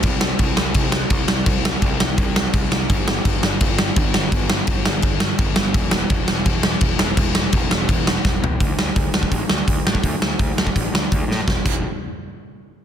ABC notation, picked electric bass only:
X:1
M:4/4
L:1/8
Q:1/4=168
K:Dlyd
V:1 name="Picked electric bass" clef=bass
=C,,2 C,, C,, C,,2 C,, C,, | =C,,2 C,, C,, C,,2 C,, C,, | =G,,,2 G,,, G,,, G,,,2 G,,, G,,, | =G,,,2 G,,, G,,, G,,,2 G,,, G,,, |
E,,,2 E,,, E,,, E,,,2 E,,, E,,, | E,,,2 E,,, E,,, E,,,2 E,,, E,,, | D,, D,, D,, D,, A,,, D,, D,, A,, | D,, D,, D,, D,, A,,, D,, D,, A,, |
E,,, E,,, z6 |]